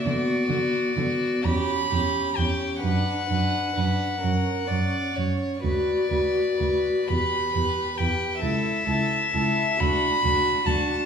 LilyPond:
<<
  \new Staff \with { instrumentName = "Violin" } { \time 6/8 \key b \minor \tempo 4. = 43 d''4. b''4 g''8 | fis''2~ fis''8 r8 | d''4. b''4 g''8 | e''4. b''4 a''8 | }
  \new Staff \with { instrumentName = "Violin" } { \time 6/8 \key b \minor fis'8 fis'8 fis'8 g'8 g'8 g'8 | b'8 b'8 b'8 ais'8 d''8 cis''8 | b'8 b'8 b'8 b'8 b'8 b'8 | a'8 a'8 a'8 fis'8 fis'8 fis'8 | }
  \new Staff \with { instrumentName = "Viola" } { \time 6/8 \key b \minor b8 b8 b8 cis'8 cis'8 cis'8 | d'8 d'8 d'8 cis'8 cis'8 cis'8 | fis'8 fis'8 fis'8 g'8 g'8 g'8 | e'8 e'8 e'8 d'8 d'8 d'8 | }
  \new Staff \with { instrumentName = "Cello" } { \clef bass \time 6/8 \key b \minor d8 d8 d8 e,8 e,8 e,8 | fis,8 fis,8 fis,8 fis,8 fis,8 fis,8 | d,8 d,8 d,8 e,8 e,8 e,8 | cis,8 cis,8 cis,8 d,8 d,8 d,8 | }
>>